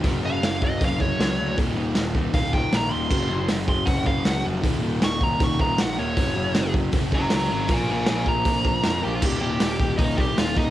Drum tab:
CC |--------|--------|x-------|--------|
HH |o-o-o-o-|o-o-o-o-|--o-o-o-|o-o-o-o-|
SD |--o---o-|--o---o-|--o---o-|--o---o-|
BD |o--ooo--|o--ooo--|o--ooo--|o--ooo--|

CC |--------|--------|x-------|
HH |o-o-o-o-|o-o-o-o-|--o-o-o-|
SD |--o---o-|--o---o-|--o---o-|
BD |o--ooo--|o--ooo--|o--ooo-o|